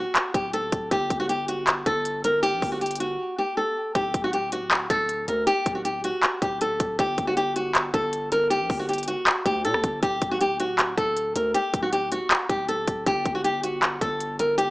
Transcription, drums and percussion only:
0.15 clap loud
0.15 closed hi-hat medium
0.34 kick loud
0.34 closed hi-hat medium
0.53 closed hi-hat medium
0.72 kick loud
0.72 closed hi-hat medium
0.91 kick loud
0.91 closed hi-hat medium
1.10 kick medium
1.10 closed hi-hat medium
1.29 closed hi-hat medium
1.48 closed hi-hat medium
1.67 clap loud
1.67 closed hi-hat medium
1.86 kick loud
1.86 closed hi-hat medium
2.05 closed hi-hat medium
2.24 closed hi-hat medium
2.43 closed hi-hat medium
2.62 kick medium
2.62 open hi-hat medium
2.81 closed hi-hat soft
2.86 closed hi-hat medium
2.91 closed hi-hat medium
2.95 closed hi-hat medium
3.00 closed hi-hat medium
3.95 kick loud
3.95 closed hi-hat medium
4.14 kick loud
4.14 closed hi-hat medium
4.33 closed hi-hat medium
4.52 closed hi-hat medium
4.71 clap loud
4.71 closed hi-hat medium
4.90 kick loud
4.90 closed hi-hat medium
5.09 closed hi-hat medium
5.28 closed hi-hat medium
5.47 closed hi-hat medium
5.66 kick medium
5.66 closed hi-hat medium
5.85 closed hi-hat medium
6.04 closed hi-hat medium
6.23 clap loud
6.23 closed hi-hat medium
6.42 kick loud
6.42 closed hi-hat medium
6.61 closed hi-hat medium
6.80 kick loud
6.80 closed hi-hat loud
6.99 kick loud
6.99 closed hi-hat medium
7.18 kick medium
7.18 closed hi-hat medium
7.37 closed hi-hat medium
7.56 closed hi-hat medium
7.75 clap loud
7.75 closed hi-hat medium
7.94 kick loud
7.94 closed hi-hat medium
8.13 closed hi-hat medium
8.32 closed hi-hat loud
8.51 closed hi-hat medium
8.70 kick loud
8.70 open hi-hat medium
8.89 closed hi-hat soft
8.93 closed hi-hat medium
8.98 closed hi-hat medium
9.03 closed hi-hat medium
9.08 closed hi-hat medium
9.27 clap loud
9.27 closed hi-hat medium
9.46 kick loud
9.46 closed hi-hat medium
9.65 closed hi-hat medium
9.74 cross-stick medium
9.84 kick medium
9.84 closed hi-hat loud
10.03 kick loud
10.03 closed hi-hat medium
10.22 kick medium
10.22 closed hi-hat medium
10.41 closed hi-hat medium
10.60 closed hi-hat medium
10.79 clap loud
10.79 closed hi-hat medium
10.98 kick loud
10.98 closed hi-hat medium
11.17 closed hi-hat medium
11.36 closed hi-hat loud
11.55 closed hi-hat medium
11.74 kick medium
11.74 closed hi-hat medium
11.93 closed hi-hat medium
12.12 closed hi-hat medium
12.31 clap loud
12.31 closed hi-hat medium
12.49 kick loud
12.49 closed hi-hat medium
12.69 closed hi-hat medium
12.88 kick loud
12.88 closed hi-hat medium
13.06 kick loud
13.06 closed hi-hat medium
13.25 kick loud
13.25 closed hi-hat medium
13.45 closed hi-hat medium
13.63 closed hi-hat medium
13.83 clap loud
13.83 closed hi-hat medium
14.01 kick loud
14.01 closed hi-hat medium
14.20 closed hi-hat medium
14.39 closed hi-hat loud
14.58 closed hi-hat medium

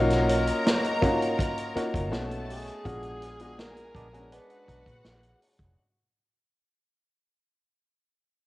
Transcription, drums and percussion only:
0.10 snare soft
0.10 closed hi-hat soft
0.29 closed hi-hat medium
0.47 closed hi-hat medium
0.66 snare loud
0.66 closed hi-hat medium
0.84 closed hi-hat soft
1.02 kick loud
1.02 closed hi-hat medium
1.22 closed hi-hat soft
1.39 kick medium
1.39 closed hi-hat medium
1.58 closed hi-hat soft
1.76 closed hi-hat medium
1.94 kick medium
1.94 closed hi-hat medium
2.13 snare loud
2.13 closed hi-hat medium
2.31 closed hi-hat soft
2.50 open hi-hat medium
2.67 closed hi-hat soft
2.85 kick loud
2.85 closed hi-hat medium
3.03 closed hi-hat soft
3.22 closed hi-hat medium
3.39 closed hi-hat medium
3.59 snare loud
3.59 closed hi-hat medium
3.77 closed hi-hat soft
3.95 kick loud
3.95 closed hi-hat medium
4.14 closed hi-hat soft
4.32 closed hi-hat medium
4.50 closed hi-hat soft
4.68 kick medium
4.68 closed hi-hat medium
4.86 kick medium
4.86 closed hi-hat soft
5.05 snare loud
5.05 closed hi-hat medium
5.23 closed hi-hat soft
5.42 open hi-hat medium
5.59 kick medium
5.59 closed hi-hat soft

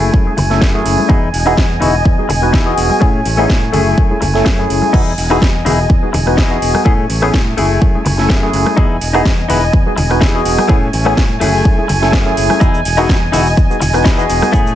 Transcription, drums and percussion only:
0.02 tambourine medium
0.14 kick loud
0.26 tambourine soft
0.26 high conga medium
0.37 open hi-hat medium
0.37 low conga medium
0.50 snare soft
0.50 tambourine medium
0.62 kick loud
0.62 snare loud
0.86 open hi-hat loud
0.98 tambourine medium
0.98 high conga medium
1.09 kick loud
1.22 tambourine soft
1.34 open hi-hat medium
1.47 tambourine medium
1.57 kick loud
1.57 snare loud
1.57 tambourine medium
1.57 high conga medium
1.71 tambourine soft
1.82 open hi-hat loud
1.82 low conga medium
1.94 tambourine medium
2.05 kick loud
2.19 tambourine soft
2.19 high conga medium
2.29 open hi-hat medium
2.29 low conga medium
2.42 tambourine medium
2.54 kick loud
2.54 snare loud
2.78 open hi-hat loud
2.90 tambourine medium
2.90 high conga medium
3.01 kick loud
3.01 tambourine medium
3.15 tambourine soft
3.25 open hi-hat loud
3.38 tambourine medium
3.49 kick loud
3.49 snare loud
3.49 tambourine medium
3.49 high conga medium
3.63 tambourine soft
3.74 open hi-hat loud
3.74 low conga medium
3.87 tambourine medium
3.98 kick loud
4.11 tambourine soft
4.11 high conga medium
4.22 open hi-hat medium
4.22 low conga medium
4.35 snare soft
4.35 tambourine medium
4.46 kick loud
4.46 snare loud
4.70 open hi-hat loud
4.82 tambourine medium
4.82 high conga medium
4.94 kick loud
4.94 crash medium
4.94 tambourine medium
5.07 tambourine soft
5.18 open hi-hat loud
5.31 cross-stick medium
5.31 tambourine medium
5.41 kick loud
5.41 snare loud
5.41 tambourine medium
5.41 high conga medium
5.55 tambourine soft
5.66 open hi-hat loud
5.66 low conga medium
5.79 tambourine medium
5.90 kick loud
5.90 tambourine medium
6.03 tambourine soft
6.03 high conga medium
6.14 open hi-hat loud
6.14 low conga medium
6.27 cross-stick medium
6.27 tambourine medium
6.38 kick loud
6.38 snare loud
6.51 tambourine soft
6.62 open hi-hat loud
6.75 cross-stick medium
6.75 tambourine medium
6.75 high conga loud
6.86 kick loud
6.99 tambourine soft
7.10 open hi-hat loud
7.22 cross-stick medium
7.22 tambourine medium
7.33 kick loud
7.33 snare loud
7.33 tambourine medium
7.33 high conga medium
7.47 tambourine soft
7.58 open hi-hat loud
7.58 low conga medium
7.70 tambourine medium
7.82 kick loud
7.95 tambourine soft
7.95 high conga medium
8.06 open hi-hat loud
8.06 low conga medium
8.18 snare soft
8.18 tambourine medium
8.30 kick loud
8.30 snare loud
8.53 open hi-hat loud
8.66 cross-stick medium
8.66 tambourine medium
8.66 high conga medium
8.77 kick loud
8.90 tambourine soft
9.01 open hi-hat loud
9.14 cross-stick medium
9.14 tambourine medium
9.25 kick loud
9.25 snare loud
9.25 tambourine medium
9.25 high conga medium
9.38 tambourine soft
9.50 open hi-hat loud
9.50 low conga medium
9.63 tambourine medium
9.73 kick loud
9.86 tambourine soft
9.86 high conga medium
9.98 open hi-hat loud
9.98 low conga loud
10.10 cross-stick medium
10.10 tambourine medium
10.21 kick loud
10.21 snare loud
10.34 tambourine soft
10.45 open hi-hat loud
10.58 cross-stick medium
10.58 tambourine medium
10.58 high conga medium
10.69 kick loud
10.83 tambourine soft
10.93 open hi-hat loud
11.06 cross-stick medium
11.06 tambourine medium
11.17 kick loud
11.17 snare loud
11.17 tambourine medium
11.17 high conga medium
11.31 tambourine soft
11.41 open hi-hat loud
11.41 low conga medium
11.54 tambourine medium
11.65 kick loud
11.78 tambourine soft
11.78 high conga medium
11.89 open hi-hat loud
11.89 low conga medium
12.01 snare soft
12.01 tambourine medium
12.13 kick loud
12.13 snare loud
12.27 tambourine soft
12.37 open hi-hat loud
12.50 cross-stick medium
12.50 tambourine medium
12.50 high conga medium
12.61 kick loud
12.61 cabasa soft
12.74 tambourine soft
12.74 cabasa soft
12.85 open hi-hat loud
12.85 cabasa medium
12.98 cross-stick medium
12.98 tambourine medium
12.98 cabasa soft
13.09 kick loud
13.09 snare loud
13.09 tambourine medium
13.09 high conga medium
13.09 cabasa soft
13.23 tambourine soft
13.33 open hi-hat loud
13.33 low conga medium
13.33 cabasa medium
13.46 tambourine medium
13.46 cabasa soft
13.57 kick loud
13.57 cabasa soft
13.70 tambourine soft
13.70 high conga medium
13.70 cabasa soft
13.81 open hi-hat loud
13.81 low conga medium
13.81 cabasa medium
13.94 cross-stick medium
13.94 tambourine medium
13.94 cabasa soft
14.05 kick loud
14.05 snare loud
14.05 cabasa soft
14.18 tambourine soft
14.18 cabasa soft
14.30 open hi-hat loud
14.30 cabasa medium
14.42 cross-stick medium
14.42 tambourine medium
14.42 high conga medium
14.42 cabasa soft
14.53 kick loud
14.53 cabasa soft
14.66 tambourine soft
14.66 cabasa soft

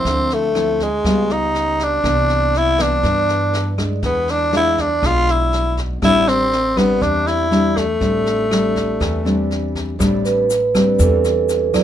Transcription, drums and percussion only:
0.05 kick medium
0.05 snare soft
0.30 snare soft
0.55 cross-stick soft
0.55 snare soft
0.80 kick soft
0.80 snare soft
1.05 kick medium
1.05 cross-stick medium
1.05 snare soft
1.30 snare soft
1.54 snare soft
1.79 kick soft
1.79 snare soft
2.04 kick medium
2.04 cross-stick medium
2.04 snare soft
2.29 snare soft
2.54 snare soft
2.78 kick soft
2.78 cross-stick medium
2.78 snare soft
3.03 kick medium
3.03 snare soft
3.28 snare soft
3.53 snare soft
3.78 kick soft
3.78 cross-stick medium
3.78 snare soft
4.03 kick medium
4.03 snare soft
4.28 snare soft
4.53 cross-stick medium
4.53 snare soft
4.78 kick soft
4.78 snare soft
5.03 kick medium
5.03 cross-stick medium
5.03 snare soft
5.28 snare soft
5.53 snare soft
5.77 kick soft
5.77 snare soft
6.02 kick medium
6.02 cross-stick medium
6.02 snare soft
6.27 snare soft
6.52 snare soft
6.77 kick soft
6.77 cross-stick medium
6.77 snare soft
7.02 kick medium
7.02 snare soft
7.27 snare soft
7.51 snare soft
7.76 kick soft
7.76 cross-stick medium
7.76 snare soft
8.01 kick medium
8.01 snare soft
8.26 snare soft
8.51 cross-stick medium
8.51 snare soft
8.76 kick soft
8.76 snare soft
9.01 kick medium
9.01 cross-stick medium
9.01 snare soft
9.26 snare soft
9.51 snare soft
9.75 kick soft
9.75 snare soft
10.00 kick medium
10.00 cross-stick medium
10.00 snare soft
10.00 shaker medium
10.25 snare soft
10.25 shaker soft
10.50 snare soft
10.50 shaker medium
10.75 kick soft
10.75 cross-stick medium
10.75 snare soft
10.75 shaker soft
10.99 kick medium
10.99 snare soft
10.99 shaker medium
11.24 snare soft
11.24 shaker soft
11.49 snare soft
11.49 shaker medium
11.74 kick soft
11.74 cross-stick medium
11.74 snare soft
11.74 shaker soft

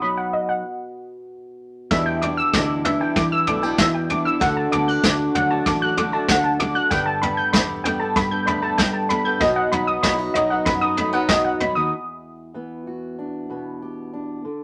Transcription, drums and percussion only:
1.91 kick loud
1.91 floor tom medium
2.22 floor tom medium
2.54 kick loud
2.54 snare loud
2.54 floor tom medium
2.85 floor tom medium
3.16 kick loud
3.16 floor tom medium
3.47 floor tom medium
3.78 kick loud
3.78 snare medium
3.78 floor tom medium
4.10 floor tom medium
4.41 kick loud
4.41 floor tom medium
4.72 floor tom medium
5.04 kick loud
5.04 snare loud
5.04 floor tom medium
5.35 floor tom medium
5.66 kick loud
5.66 floor tom medium
5.97 floor tom medium
6.29 kick loud
6.29 snare loud
6.29 floor tom medium
6.60 floor tom medium
6.91 kick loud
6.91 floor tom medium
7.23 floor tom medium
7.54 kick loud
7.54 snare loud
7.54 floor tom medium
7.85 floor tom medium
8.16 kick loud
8.16 floor tom medium
8.47 floor tom medium
8.78 kick medium
8.78 snare medium
8.78 floor tom medium
9.10 floor tom medium
9.41 kick loud
9.41 floor tom medium
9.72 floor tom medium
10.03 kick medium
10.03 snare medium
10.03 floor tom medium
10.35 floor tom medium
10.66 kick loud
10.66 floor tom medium
10.97 floor tom medium
11.29 kick loud
11.29 snare loud
11.29 floor tom medium
11.60 floor tom medium

